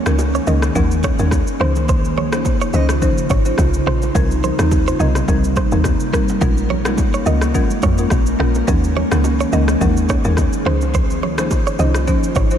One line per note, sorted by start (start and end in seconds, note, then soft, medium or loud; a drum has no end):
0.00 1.58 D#3 medium
0.00 1.56 A#3 medium
0.00 1.56 C#4 medium
0.00 1.58 G#4 medium
0.06 0.40 C#2 medium
0.06 0.20 G#3 medium
0.06 0.21 C#4 medium
0.06 0.21 D#4 medium
0.06 0.21 A#4 medium
0.06 cross-stick loud
0.06 low bongo medium
0.06 shaker medium
0.19 high bongo medium
0.19 shaker medium
0.35 0.45 C#5 medium
0.35 shaker medium
0.47 0.70 C#2 loud
0.47 0.64 G#3 medium
0.47 0.64 C#4 medium
0.47 0.64 D#4 medium
0.47 0.64 A#4 medium
0.47 0.59 D#5 medium
0.47 shaker medium
0.62 cross-stick loud
0.62 shaker medium
0.75 1.11 D#2 loud
0.75 1.15 G#3 medium
0.75 1.16 C#4 medium
0.75 1.16 D#4 medium
0.75 1.16 A#4 loud
0.75 kick medium
0.75 low conga medium
0.75 shaker medium
0.91 shaker medium
1.03 1.16 C#5 medium
1.03 kick medium
1.03 cross-stick medium
1.03 low bongo medium
1.03 shaker medium
1.19 1.43 D#2 medium
1.19 1.34 G#3 medium
1.19 1.34 C#4 medium
1.19 1.34 D#4 medium
1.19 1.34 A#4 medium
1.19 shaker medium
1.31 kick medium
1.31 cross-stick medium
1.31 high bongo medium
1.31 low bongo medium
1.31 shaker medium
1.47 shaker medium
1.60 2.53 C#2 loud
1.60 4.13 C#3 medium
1.60 1.86 F3 medium
1.60 1.87 C#4 medium
1.60 1.87 D#4 medium
1.60 6.38 D#4 medium
1.60 4.13 F4 medium
1.60 4.12 C5 medium
1.60 1.87 C5 loud
1.60 1.73 C5 medium
1.60 cross-stick medium
1.76 low bongo medium
1.76 shaker soft
1.89 2.01 C5 loud
1.89 kick loud
1.89 low conga medium
1.89 shaker medium
2.05 shaker soft
2.17 2.29 C#5 medium
2.17 high bongo soft
2.17 low conga medium
2.32 2.47 F3 medium
2.32 2.47 C#4 medium
2.32 2.47 D#4 medium
2.32 2.47 C5 medium
2.32 cross-stick loud
2.32 low bongo medium
2.32 shaker medium
2.45 kick loud
2.45 high bongo medium
2.45 shaker medium
2.61 2.74 C#5 medium
2.61 shaker soft
2.73 3.10 C#2 medium
2.73 2.90 F3 medium
2.73 2.91 C#4 medium
2.73 2.91 D#4 medium
2.73 2.91 C5 medium
2.73 2.86 D#5 medium
2.73 shaker medium
2.89 cross-stick loud
2.89 shaker medium
3.02 3.42 F3 medium
3.02 3.42 C#4 medium
3.02 3.42 D#4 medium
3.02 3.42 C5 loud
3.02 kick medium
3.02 low conga medium
3.02 shaker medium
3.18 shaker medium
3.30 3.53 G#1 medium
3.30 3.43 C#5 medium
3.30 kick loud
3.30 low bongo medium
3.30 shaker medium
3.45 3.83 F3 medium
3.45 3.84 C#4 medium
3.45 3.84 D#4 medium
3.45 3.84 C5 medium
3.45 shaker medium
3.58 3.82 C2 loud
3.58 kick medium
3.58 cross-stick medium
3.58 high bongo medium
3.58 low bongo medium
3.58 shaker medium
3.74 shaker medium
3.86 4.10 A#1 medium
3.86 4.13 F3 medium
3.86 4.13 C#4 medium
3.86 4.13 D#4 medium
3.86 4.13 C5 medium
3.86 3.99 C5 medium
3.86 cross-stick medium
4.02 low bongo medium
4.02 shaker soft
4.15 4.51 C2 loud
4.15 6.39 C3 medium
4.15 4.55 G3 medium
4.15 6.39 G3 medium
4.15 10.62 A#3 medium
4.15 4.55 C4 medium
4.15 4.55 D#4 medium
4.15 4.55 A#4 loud
4.15 4.27 A#4 loud
4.15 kick loud
4.15 low conga medium
4.15 shaker medium
4.31 shaker soft
4.44 4.56 C5 medium
4.44 high bongo medium
4.44 low conga medium
4.44 shaker medium
4.59 4.93 D#2 loud
4.59 4.73 G3 medium
4.59 4.73 C4 medium
4.59 4.74 D#4 medium
4.59 4.74 A#4 medium
4.59 cross-stick loud
4.59 low bongo medium
4.59 shaker medium
4.71 kick medium
4.71 high bongo medium
4.71 shaker medium
4.88 4.97 C5 medium
4.88 shaker medium
5.00 5.23 C2 medium
5.00 5.17 G3 medium
5.00 5.17 C4 medium
5.00 5.17 D#4 medium
5.00 5.17 A#4 medium
5.00 5.12 D#5 medium
5.00 shaker medium
5.15 cross-stick medium
5.15 high bongo medium
5.15 shaker medium
5.28 5.64 C2 medium
5.28 5.68 G3 medium
5.28 5.68 C4 medium
5.28 5.68 D#4 medium
5.28 5.68 A#4 loud
5.28 kick medium
5.28 low conga medium
5.28 shaker medium
5.44 shaker medium
5.56 5.69 C5 medium
5.56 kick loud
5.56 cross-stick medium
5.56 low bongo medium
5.56 shaker medium
5.72 5.95 D#2 loud
5.72 6.10 G3 medium
5.72 6.10 C4 medium
5.72 6.10 D#4 medium
5.72 6.10 A#4 medium
5.72 shaker medium
5.84 kick medium
5.84 cross-stick medium
5.84 high bongo medium
5.84 low bongo medium
5.84 shaker medium
6.00 shaker medium
6.13 6.39 G3 medium
6.13 6.39 C4 medium
6.13 6.39 D#4 medium
6.13 6.40 A#4 medium
6.13 6.25 A#4 medium
6.13 kick medium
6.13 cross-stick medium
6.13 shaker medium
6.28 low bongo medium
6.28 shaker soft
6.41 7.22 A#1 loud
6.41 6.81 G#3 medium
6.41 8.66 G#3 medium
6.41 6.82 C#4 medium
6.41 10.62 C#4 medium
6.41 6.82 F4 medium
6.41 6.82 A#4 loud
6.41 6.54 A#4 loud
6.41 kick loud
6.41 low conga medium
6.41 shaker medium
6.57 shaker soft
6.70 6.82 C#5 medium
6.70 high bongo medium
6.70 low conga medium
6.85 7.00 G#3 medium
6.85 7.00 C#4 medium
6.85 7.00 F4 medium
6.85 7.00 A#4 medium
6.85 cross-stick loud
6.85 low bongo medium
6.85 shaker medium
6.98 kick loud
6.98 high bongo medium
6.98 shaker medium
7.14 7.24 C#5 medium
7.14 shaker soft
7.26 7.62 C#2 medium
7.26 7.43 G#3 medium
7.26 7.43 C#4 medium
7.26 7.43 F4 medium
7.26 7.43 A#4 medium
7.26 7.39 D#5 medium
7.26 shaker medium
7.41 cross-stick loud
7.41 shaker medium
7.54 7.95 G#3 medium
7.54 7.95 C#4 medium
7.54 7.95 F4 medium
7.54 7.95 A#4 loud
7.54 kick medium
7.54 low conga medium
7.54 shaker medium
7.70 shaker medium
7.82 8.06 F2 medium
7.82 7.95 C#5 medium
7.82 kick loud
7.82 low bongo medium
7.82 shaker medium
7.98 8.36 G#3 medium
7.98 8.36 C#4 medium
7.98 8.37 F4 medium
7.98 8.37 A#4 medium
7.98 shaker medium
8.10 8.34 A#1 medium
8.10 kick medium
8.10 cross-stick medium
8.10 high bongo medium
8.10 low bongo medium
8.10 shaker medium
8.26 shaker medium
8.39 8.63 A#1 medium
8.39 8.66 G#3 medium
8.39 8.66 C#4 medium
8.39 8.66 F4 medium
8.39 8.66 A#4 medium
8.39 8.52 A#4 medium
8.39 cross-stick medium
8.55 low bongo medium
8.55 shaker soft
8.68 9.04 D#2 loud
8.68 10.64 D#3 medium
8.68 9.08 G#3 medium
8.68 9.08 C#4 medium
8.68 9.08 D#4 medium
8.68 10.64 G#4 medium
8.68 9.08 A#4 loud
8.68 8.80 A#4 loud
8.68 kick loud
8.68 low conga medium
8.68 shaker medium
8.84 shaker soft
8.97 9.08 C#5 medium
8.97 high bongo medium
8.97 low conga medium
9.11 9.45 C#2 medium
9.11 9.26 G#3 medium
9.11 9.26 C#4 medium
9.11 9.26 D#4 medium
9.11 9.26 A#4 medium
9.11 cross-stick loud
9.11 low bongo medium
9.11 shaker medium
9.24 high bongo medium
9.24 shaker medium
9.40 9.50 C#5 medium
9.40 shaker soft
9.52 9.76 C#2 loud
9.52 9.70 G#3 medium
9.52 9.70 C#4 medium
9.52 9.70 D#4 medium
9.52 9.70 A#4 medium
9.52 9.65 D#5 medium
9.52 shaker medium
9.68 cross-stick loud
9.68 shaker medium
9.81 10.17 D#2 loud
9.81 10.21 G#3 medium
9.81 10.21 C#4 medium
9.81 10.21 D#4 medium
9.81 10.21 A#4 loud
9.81 kick medium
9.81 low conga medium
9.81 shaker medium
9.97 shaker medium
10.09 10.22 C#5 medium
10.09 kick loud
10.09 cross-stick medium
10.09 low bongo medium
10.09 shaker medium
10.24 10.48 D#2 medium
10.24 10.63 G#3 medium
10.24 10.63 C#4 medium
10.24 10.63 D#4 medium
10.24 10.63 A#4 medium
10.24 shaker medium
10.37 kick medium
10.37 cross-stick medium
10.37 high bongo medium
10.37 low bongo medium
10.37 shaker medium
10.53 shaker medium
10.66 11.59 C#2 loud
10.66 10.92 F3 medium
10.66 10.92 C#4 medium
10.66 12.58 C#4 medium
10.66 12.58 D#4 medium
10.66 10.92 D#4 medium
10.66 12.58 F4 loud
10.66 12.58 C5 medium
10.66 10.92 C5 medium
10.66 10.78 C5 medium
10.66 cross-stick medium
10.81 low bongo medium
10.81 shaker soft
10.94 11.07 C5 loud
10.94 kick loud
10.94 low conga medium
10.94 shaker medium
11.10 shaker soft
11.23 11.35 C#5 medium
11.23 high bongo medium
11.23 low conga medium
11.38 11.53 F3 medium
11.38 11.53 C#4 medium
11.38 11.53 D#4 medium
11.38 11.53 C5 medium
11.38 cross-stick loud
11.38 low bongo medium
11.38 shaker medium
11.51 kick loud
11.51 high bongo medium
11.51 shaker medium
11.67 11.77 C#5 medium
11.67 shaker soft
11.79 12.15 C2 loud
11.79 11.96 F3 medium
11.79 11.96 C#4 medium
11.79 11.96 D#4 medium
11.79 11.96 C5 medium
11.79 11.92 D#5 medium
11.79 shaker medium
11.94 cross-stick loud
11.94 shaker medium
12.07 12.47 F3 medium
12.07 12.48 C#4 medium
12.07 12.48 D#4 medium
12.07 12.48 C5 loud
12.07 kick medium
12.07 low conga medium
12.07 shaker medium
12.23 shaker medium
12.35 12.58 G#1 medium
12.35 12.48 C#5 medium
12.35 kick medium
12.35 low bongo medium
12.35 shaker medium
12.51 12.58 F3 medium
12.51 12.58 C#4 medium
12.51 12.58 D#4 medium
12.51 12.58 C5 medium
12.51 shaker medium